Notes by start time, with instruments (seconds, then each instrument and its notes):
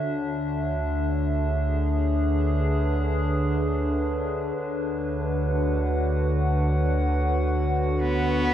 Already playing: ambient pad D3 D4 F#4 C#5 E5, synth drone D3, glass harmonica C#5
0.04 sub bass D2
1.35 ambient pad G#4
2.07 ambient pad B4
4.58 sub bass D2
5.15 ambient pad F#5
5.26 ambient pad F#4
8.01 cello B3